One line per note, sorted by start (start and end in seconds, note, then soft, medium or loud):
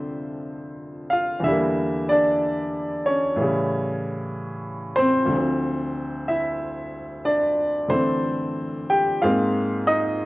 0.00 1.43 F2 soft
0.00 1.44 C3 soft
0.00 1.42 D3 soft
0.00 1.45 A3 soft
0.00 1.46 C4 medium
0.00 1.46 E4 medium
0.00 1.11 F4 soft
0.00 0.10 C5 medium
0.00 1.47 D5 medium
0.00 1.44 E5 medium
1.10 1.43 F4 medium
1.10 1.41 F5 medium
1.40 3.36 E2 soft
1.40 3.38 D3 soft
1.44 3.38 G3 soft
1.44 2.06 E4 medium
1.44 2.10 E5 medium
1.51 3.41 A#3 medium
2.09 3.03 D4 medium
2.09 3.02 D5 medium
3.06 3.98 C#4 medium
3.06 3.98 C#5 medium
3.36 5.30 A2 medium
3.36 5.31 E3 soft
3.36 5.32 G3 soft
3.41 5.33 C#3 medium
4.96 5.35 C4 medium
4.96 5.91 C5 medium
5.26 9.19 D2 soft
5.26 7.87 D3 soft
5.32 9.23 F3 soft
5.37 7.89 C4 soft
6.28 7.21 E4 medium
6.28 7.21 E5 medium
7.25 7.40 D4 medium
7.25 7.40 D5 medium
7.89 9.22 D3 soft
7.89 9.22 E3 soft
7.89 9.23 A3 soft
7.89 8.85 C4 medium
7.89 8.92 C5 medium
8.90 9.20 G4 medium
8.90 9.24 G5 medium
9.22 10.26 G#2 medium
9.22 10.26 G#3 soft
9.22 10.26 A#3 medium
9.22 10.26 C4 medium
9.22 9.83 F4 medium
9.22 9.83 F5 medium
9.87 10.26 D#4 medium
9.87 10.26 D#5 loud